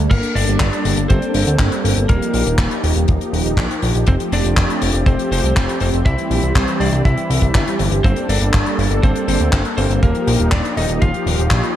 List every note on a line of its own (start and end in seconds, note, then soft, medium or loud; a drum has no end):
0.11 0.20 G1 loud
0.11 2.07 G3 medium
0.11 4.03 A#3 medium
0.11 0.34 A#3 medium
0.11 2.07 D4 medium
0.11 2.07 A4 loud
0.11 0.36 A#4 loud
0.11 kick loud
0.11 closed hi-hat medium
0.11 crash loud
0.23 closed hi-hat medium
0.35 0.45 G1 medium
0.35 1.06 D4 medium
0.35 1.06 D5 loud
0.35 open hi-hat loud
0.48 0.58 G1 medium
0.48 closed hi-hat medium
0.60 0.70 G1 loud
0.60 kick loud
0.60 clap loud
0.60 closed hi-hat medium
0.73 closed hi-hat medium
0.85 0.95 G1 medium
0.85 open hi-hat loud
0.97 1.07 G1 medium
0.97 closed hi-hat medium
1.10 1.20 G1 loud
1.10 2.05 C4 medium
1.10 2.09 C5 loud
1.10 kick loud
1.10 closed hi-hat medium
1.22 closed hi-hat medium
1.34 1.44 G1 medium
1.34 open hi-hat loud
1.47 1.57 D2 medium
1.47 closed hi-hat medium
1.59 1.69 G1 loud
1.59 kick loud
1.59 clap loud
1.59 closed hi-hat medium
1.72 closed hi-hat medium
1.84 1.94 G1 medium
1.84 open hi-hat loud
1.97 2.06 G1 medium
1.97 closed hi-hat medium
2.09 2.19 D#1 loud
2.09 6.02 F3 medium
2.09 2.56 A#3 medium
2.09 4.06 D#4 medium
2.09 8.00 G4 medium
2.09 2.55 A#4 medium
2.09 kick loud
2.09 closed hi-hat medium
2.22 closed hi-hat medium
2.34 2.44 A#1 medium
2.34 open hi-hat loud
2.46 2.56 D#1 medium
2.46 closed hi-hat medium
2.58 2.68 D#1 loud
2.58 kick loud
2.58 clap loud
2.58 closed hi-hat medium
2.71 closed hi-hat medium
2.84 2.93 D#1 loud
2.84 open hi-hat loud
2.96 3.05 D#1 medium
2.96 closed hi-hat medium
3.08 3.18 D#1 loud
3.08 kick loud
3.08 closed hi-hat medium
3.21 closed hi-hat medium
3.33 3.43 D#1 loud
3.33 open hi-hat loud
3.45 3.55 D#1 medium
3.45 closed hi-hat medium
3.57 3.67 A#1 loud
3.57 kick loud
3.57 clap loud
3.57 closed hi-hat medium
3.71 closed hi-hat medium
3.82 3.92 A#1 medium
3.82 open hi-hat loud
3.95 4.05 A#1 medium
3.95 closed hi-hat medium
4.07 4.17 F1 loud
4.07 6.04 A3 medium
4.07 8.00 C4 medium
4.07 4.15 C4 medium
4.07 4.15 C5 medium
4.07 kick loud
4.07 closed hi-hat medium
4.20 closed hi-hat medium
4.32 4.42 F1 loud
4.32 5.03 D4 medium
4.32 5.09 D5 medium
4.32 open hi-hat loud
4.45 4.54 F1 medium
4.45 closed hi-hat medium
4.57 4.67 F1 loud
4.57 kick loud
4.57 clap loud
4.57 closed hi-hat medium
4.70 closed hi-hat medium
4.82 4.91 F1 medium
4.82 open hi-hat loud
4.94 5.04 F1 medium
4.94 closed hi-hat medium
5.06 5.16 F1 loud
5.06 5.30 C4 medium
5.06 5.30 C5 medium
5.06 kick loud
5.06 closed hi-hat medium
5.19 closed hi-hat medium
5.31 5.41 F1 medium
5.31 5.55 C4 medium
5.31 5.55 C5 medium
5.31 open hi-hat loud
5.44 5.53 C2 medium
5.44 closed hi-hat medium
5.56 5.66 F1 loud
5.56 5.80 C4 medium
5.56 5.80 C5 medium
5.56 kick loud
5.56 clap loud
5.56 closed hi-hat medium
5.69 closed hi-hat medium
5.80 5.91 F1 medium
5.80 5.89 C4 medium
5.80 5.88 C5 medium
5.80 open hi-hat medium
5.93 6.03 F1 medium
5.93 closed hi-hat medium
6.06 6.15 C2 loud
6.06 8.02 E3 medium
6.06 9.99 G3 medium
6.06 6.52 E4 medium
6.06 6.52 E5 loud
6.06 kick loud
6.06 closed hi-hat medium
6.18 closed hi-hat medium
6.31 6.40 A#1 loud
6.31 open hi-hat loud
6.43 6.53 C2 medium
6.43 closed hi-hat medium
6.55 6.65 C2 loud
6.55 6.79 C4 medium
6.55 6.79 C5 loud
6.55 kick loud
6.55 clap loud
6.55 closed hi-hat medium
6.68 closed hi-hat medium
6.80 6.90 C2 medium
6.80 7.04 D4 medium
6.80 7.05 D5 loud
6.80 open hi-hat loud
6.93 7.02 C2 medium
6.93 closed hi-hat medium
7.05 7.15 C2 loud
7.05 7.76 E4 medium
7.05 7.75 E5 loud
7.05 kick loud
7.05 closed hi-hat medium
7.17 closed hi-hat medium
7.30 7.39 C2 medium
7.30 open hi-hat loud
7.42 7.52 C2 medium
7.42 kick medium
7.42 closed hi-hat medium
7.55 7.64 G1 loud
7.55 kick loud
7.55 clap loud
7.55 closed hi-hat medium
7.67 closed hi-hat medium
7.79 7.89 G1 medium
7.79 open hi-hat loud
7.92 8.01 G1 medium
7.92 closed hi-hat medium
8.04 8.14 G1 loud
8.04 11.76 A#3 medium
8.04 8.28 C4 medium
8.04 10.01 D4 medium
8.04 10.01 A4 medium
8.04 8.30 C5 medium
8.04 kick loud
8.04 closed hi-hat medium
8.16 closed hi-hat medium
8.29 8.38 G1 medium
8.29 9.00 D4 medium
8.29 9.06 D5 loud
8.29 open hi-hat loud
8.41 8.51 G1 medium
8.41 closed hi-hat medium
8.53 8.64 G1 loud
8.53 kick loud
8.53 clap loud
8.53 closed hi-hat medium
8.66 closed hi-hat medium
8.78 8.88 G1 medium
8.78 open hi-hat loud
8.91 9.00 G1 medium
8.91 closed hi-hat medium
9.03 9.13 G1 loud
9.03 9.27 C4 medium
9.03 9.27 C5 medium
9.03 kick loud
9.03 closed hi-hat medium
9.16 closed hi-hat medium
9.28 9.38 G1 medium
9.28 9.52 C4 medium
9.28 9.52 C5 medium
9.28 open hi-hat loud
9.40 9.50 D2 medium
9.40 closed hi-hat medium
9.53 9.62 G1 loud
9.53 9.60 C4 medium
9.53 9.60 C5 medium
9.53 kick loud
9.53 clap loud
9.53 closed hi-hat medium
9.65 closed hi-hat medium
9.78 9.87 G1 loud
9.78 10.01 C4 medium
9.78 10.02 C5 medium
9.78 open hi-hat loud
9.90 10.00 G1 medium
9.90 closed hi-hat soft
10.02 10.12 D#1 loud
10.02 11.76 F3 medium
10.02 10.49 A#3 medium
10.02 11.76 D#4 medium
10.02 11.76 G4 loud
10.02 10.54 A#4 loud
10.02 kick loud
10.02 closed hi-hat medium
10.15 closed hi-hat medium
10.27 10.37 A#1 medium
10.27 open hi-hat loud
10.40 10.49 D#1 medium
10.40 closed hi-hat medium
10.52 10.62 D#1 loud
10.52 10.76 D4 medium
10.52 10.75 D5 loud
10.52 kick loud
10.52 clap loud
10.52 closed hi-hat medium
10.65 closed hi-hat medium
10.77 10.86 D#1 medium
10.77 11.01 D#4 medium
10.77 11.03 D#5 loud
10.77 open hi-hat loud
10.89 10.99 D#1 medium
10.89 closed hi-hat medium
11.02 11.11 D#1 loud
11.02 11.72 F4 medium
11.02 11.72 F5 loud
11.02 kick loud
11.02 closed hi-hat medium
11.14 closed hi-hat medium
11.26 11.36 D#1 medium
11.26 open hi-hat loud
11.39 11.48 D#1 medium
11.39 closed hi-hat medium
11.51 11.61 A#1 loud
11.51 kick loud
11.51 clap loud
11.51 closed hi-hat medium
11.63 closed hi-hat medium